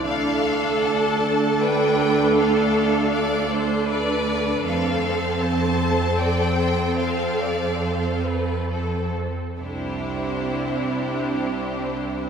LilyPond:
<<
  \new Staff \with { instrumentName = "Violin section" } { \time 3/4 \key d \dorian \tempo 4 = 76 f''4 a''4 g''4 | f''4. r8 d''4 | f''4 a''4 g''4 | f''4. r4. |
c''2. | }
  \new Staff \with { instrumentName = "Violin section" } { \time 3/4 \key d \dorian a'2 b'4 | a'4 d''8 c''8 b'4 | a'4 c''4 d''8 c''8 | c''8 d''8 c''8 b'8 a'8 r8 |
<e' g'>2. | }
  \new Staff \with { instrumentName = "Viola section" } { \time 3/4 \key d \dorian <d' a'>2.~ | <d' a'>2. | <c' a'>2.~ | <c' a'>2~ <c' a'>8. r16 |
<c' d'>2. | }
  \new Staff \with { instrumentName = "Cello section" } { \clef bass \time 3/4 \key d \dorian d,2.~ | d,2. | f,2.~ | f,2~ f,8. r16 |
c,2. | }
>>